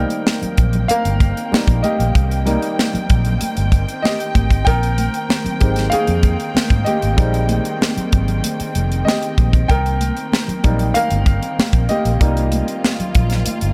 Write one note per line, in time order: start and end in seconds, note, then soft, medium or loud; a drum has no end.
0.00 13.73 D#3 medium
0.00 1.50 G3 medium
0.00 1.51 A#3 soft
0.00 4.63 A#3 medium
0.00 13.73 C4 medium
0.00 1.51 D#4 medium
0.00 0.85 A#4 medium
0.00 0.84 G5 loud
0.00 12.17 G5 medium
0.10 closed hi-hat soft
0.26 snare medium
0.26 high conga medium
0.42 muted fingered electric bass stroke soft
0.42 closed hi-hat soft
0.42 low conga medium
0.57 0.85 A#1 medium
0.57 kick medium
0.57 closed hi-hat medium
0.57 low conga medium
0.73 closed hi-hat soft
0.73 low conga medium
0.88 1.80 A#4 medium
0.88 1.79 F5 loud
0.88 closed hi-hat loud
0.88 high conga medium
1.05 1.32 G1 medium
1.05 closed hi-hat medium
1.20 kick medium
1.20 closed hi-hat medium
1.20 muted conga soft
1.37 closed hi-hat soft
1.52 1.80 G3 soft
1.52 1.80 A#3 soft
1.52 1.81 D#4 soft
1.52 muted fingered electric bass stroke soft
1.52 snare loud
1.52 high conga medium
1.68 1.81 A#1 medium
1.68 kick loud
1.68 closed hi-hat medium
1.83 3.06 G4 medium
1.83 3.05 D#5 medium
1.83 closed hi-hat medium
1.83 muted conga soft
1.83 high conga medium
1.99 2.13 A#1 medium
1.99 closed hi-hat medium
2.15 2.56 C2 loud
2.15 kick loud
2.15 closed hi-hat medium
2.31 closed hi-hat soft
2.46 4.62 G3 medium
2.46 4.62 A#3 soft
2.46 4.63 D#4 medium
2.46 closed hi-hat medium
2.46 muted conga soft
2.46 high conga medium
2.62 closed hi-hat medium
2.79 snare medium
2.79 muted conga soft
2.79 high conga medium
2.94 muted fingered electric bass stroke soft
2.94 closed hi-hat soft
2.94 low conga medium
3.10 3.37 A#1 medium
3.10 kick medium
3.10 closed hi-hat medium
3.10 low conga medium
3.25 closed hi-hat medium
3.25 low conga medium
3.41 muted fingered electric bass stroke soft
3.41 closed hi-hat loud
3.41 muted conga soft
3.41 high conga medium
3.57 3.84 G1 medium
3.57 closed hi-hat medium
3.72 kick loud
3.72 closed hi-hat medium
3.72 muted conga soft
3.89 closed hi-hat medium
4.02 4.63 G4 medium
4.02 4.68 D#5 medium
4.02 snare loud
4.02 high conga medium
4.20 closed hi-hat medium
4.35 4.62 G#1 loud
4.35 kick medium
4.35 closed hi-hat medium
4.35 muted conga soft
4.35 high conga medium
4.51 kick medium
4.51 closed hi-hat medium
4.65 5.07 A#1 loud
4.65 9.66 A#3 medium
4.65 5.89 A#4 medium
4.65 5.87 G5 loud
4.65 kick loud
4.65 closed hi-hat medium
4.83 closed hi-hat soft
4.98 closed hi-hat medium
4.98 muted conga soft
4.98 high conga medium
5.14 closed hi-hat medium
5.29 snare loud
5.29 muted conga soft
5.29 high conga medium
5.45 muted fingered electric bass stroke soft
5.45 closed hi-hat soft
5.45 low conga medium
5.60 5.88 G#1 medium
5.60 6.51 G#3 medium
5.60 6.51 C4 soft
5.60 6.51 D#4 medium
5.60 6.51 G4 medium
5.60 kick medium
5.60 closed hi-hat medium
5.60 muted conga soft
5.60 low conga medium
5.76 snare soft
5.76 closed hi-hat medium
5.76 low conga medium
5.90 6.83 G#4 medium
5.90 6.88 F5 loud
5.90 muted fingered electric bass stroke soft
5.90 closed hi-hat loud
5.90 high conga medium
6.07 6.35 F2 loud
6.07 closed hi-hat medium
6.23 kick medium
6.23 closed hi-hat medium
6.40 closed hi-hat soft
6.55 muted fingered electric bass stroke soft
6.55 snare loud
6.55 high conga medium
6.70 6.84 G#2 medium
6.70 kick medium
6.70 closed hi-hat medium
6.85 8.09 G4 medium
6.85 8.07 D#5 medium
6.85 closed hi-hat medium
6.85 muted conga soft
6.85 high conga medium
7.02 7.16 G#1 medium
7.02 closed hi-hat medium
7.17 7.58 A#1 loud
7.17 7.46 G3 medium
7.17 7.46 G#3 soft
7.17 7.60 C4 soft
7.17 7.60 D#4 medium
7.17 kick loud
7.17 closed hi-hat medium
7.34 closed hi-hat soft
7.49 closed hi-hat medium
7.49 muted conga soft
7.49 high conga medium
7.65 closed hi-hat medium
7.81 snare loud
7.81 muted conga soft
7.81 high conga medium
7.97 muted fingered electric bass stroke soft
7.97 closed hi-hat medium
7.97 low conga medium
8.12 8.40 G#1 medium
8.12 kick medium
8.12 closed hi-hat medium
8.12 low conga medium
8.28 closed hi-hat soft
8.28 low conga medium
8.44 closed hi-hat loud
8.44 muted conga soft
8.44 high conga medium
8.60 muted fingered electric bass stroke soft
8.60 closed hi-hat medium
8.75 9.02 F1 medium
8.75 closed hi-hat medium
8.75 muted conga soft
8.92 closed hi-hat medium
9.05 9.66 G4 medium
9.05 9.70 D#5 medium
9.05 snare loud
9.05 high conga medium
9.23 closed hi-hat medium
9.38 9.65 A#1 medium
9.38 kick medium
9.38 closed hi-hat medium
9.38 high conga medium
9.53 kick medium
9.53 closed hi-hat medium
9.68 10.10 C2 loud
9.68 13.73 A#3 medium
9.68 10.92 A#4 medium
9.68 10.98 G5 loud
9.68 kick loud
9.68 closed hi-hat medium
9.68 muted conga soft
9.86 closed hi-hat medium
10.01 closed hi-hat medium
10.01 high conga medium
10.17 closed hi-hat soft
10.32 snare medium
10.32 high conga medium
10.48 muted fingered electric bass stroke soft
10.48 closed hi-hat soft
10.48 low conga medium
10.63 10.91 A#1 medium
10.63 11.54 G3 medium
10.63 11.54 A#3 medium
10.63 11.54 D#4 medium
10.63 kick loud
10.63 closed hi-hat medium
10.63 muted conga soft
10.63 low conga medium
10.79 closed hi-hat medium
10.79 low conga medium
10.94 11.86 A#4 medium
10.94 11.92 F5 loud
10.94 closed hi-hat loud
10.94 high conga medium
11.10 11.38 G1 medium
11.10 closed hi-hat medium
11.26 kick medium
11.26 closed hi-hat medium
11.26 muted conga soft
11.43 closed hi-hat soft
11.59 muted fingered electric bass stroke soft
11.59 snare loud
11.59 high conga medium
11.73 11.87 A#1 medium
11.73 kick medium
11.73 closed hi-hat medium
11.89 13.12 G4 medium
11.89 13.11 D#5 medium
11.89 closed hi-hat medium
11.89 muted conga soft
11.89 high conga medium
12.05 12.18 A#1 medium
12.05 closed hi-hat medium
12.20 12.61 C2 medium
12.20 13.73 G3 medium
12.20 13.73 A#3 medium
12.20 13.73 D#4 medium
12.20 13.73 F4 medium
12.20 kick loud
12.20 closed hi-hat medium
12.20 muted conga soft
12.37 closed hi-hat medium
12.52 closed hi-hat medium
12.52 muted conga soft
12.52 high conga medium
12.68 closed hi-hat medium
12.84 snare medium
12.84 high conga medium
13.00 muted fingered electric bass stroke soft
13.00 closed hi-hat medium
13.00 low conga medium
13.15 13.42 A#1 medium
13.15 kick medium
13.15 closed hi-hat medium
13.15 low conga medium
13.30 snare soft
13.30 closed hi-hat medium
13.30 low conga medium
13.46 closed hi-hat loud
13.46 high conga medium
13.61 13.73 G1 medium
13.61 closed hi-hat medium